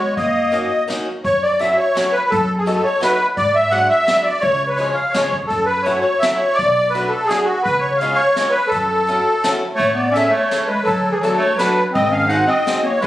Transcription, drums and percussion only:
0.17 kick, closed hi-hat
0.53 closed hi-hat
0.90 snare, closed hi-hat
1.25 kick, closed hi-hat
1.61 closed hi-hat
1.97 snare, closed hi-hat
2.32 kick, closed hi-hat
2.68 closed hi-hat
3.02 snare, closed hi-hat
3.37 kick, closed hi-hat
3.72 closed hi-hat
4.08 snare, closed hi-hat
4.42 kick, closed hi-hat
4.78 closed hi-hat
5.14 snare, closed hi-hat
5.50 kick, closed hi-hat
5.87 closed hi-hat
6.23 snare, closed hi-hat
6.58 kick, closed hi-hat
6.95 closed hi-hat
7.30 snare, closed hi-hat
7.66 kick, closed hi-hat
8.00 closed hi-hat
8.36 snare, closed hi-hat
8.71 kick, closed hi-hat
9.07 closed hi-hat
9.44 snare, closed hi-hat
9.79 kick, closed hi-hat
10.15 closed hi-hat
10.51 snare, closed hi-hat
10.87 kick, closed hi-hat
11.23 closed hi-hat
11.59 snare, closed hi-hat
11.95 kick, closed hi-hat
12.31 closed hi-hat
12.67 snare, closed hi-hat
13.04 closed hi-hat

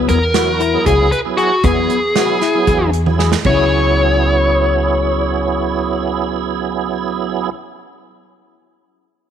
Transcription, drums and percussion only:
0.09 closed hi-hat
0.34 snare, closed hi-hat
0.60 closed hi-hat
0.86 kick, closed hi-hat
1.12 closed hi-hat
1.38 closed hi-hat
1.64 kick, closed hi-hat
1.90 closed hi-hat
2.16 snare, closed hi-hat
2.41 snare, closed hi-hat
2.67 kick, closed hi-hat
2.93 closed hi-hat
3.06 high tom
3.19 snare
3.32 snare
3.44 kick, crash

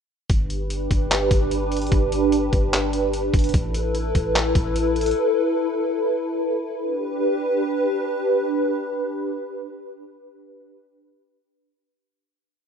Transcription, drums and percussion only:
0.30 kick, closed hi-hat
0.50 closed hi-hat
0.70 closed hi-hat
0.91 kick, closed hi-hat
1.11 clap, closed hi-hat
1.31 kick, closed hi-hat
1.51 closed hi-hat
1.72 closed hi-hat
1.77 closed hi-hat
1.82 closed hi-hat
1.87 closed hi-hat
1.92 kick, closed hi-hat
2.12 closed hi-hat
2.32 closed hi-hat
2.53 kick, closed hi-hat
2.73 clap, closed hi-hat
2.93 closed hi-hat
3.13 closed hi-hat
3.34 kick, closed hi-hat
3.39 closed hi-hat
3.44 closed hi-hat
3.49 closed hi-hat
3.54 kick, closed hi-hat
3.74 closed hi-hat
3.95 closed hi-hat
4.15 kick, closed hi-hat
4.35 clap, closed hi-hat
4.55 kick, closed hi-hat
4.76 closed hi-hat
4.96 closed hi-hat
5.01 closed hi-hat
5.06 closed hi-hat
5.11 closed hi-hat

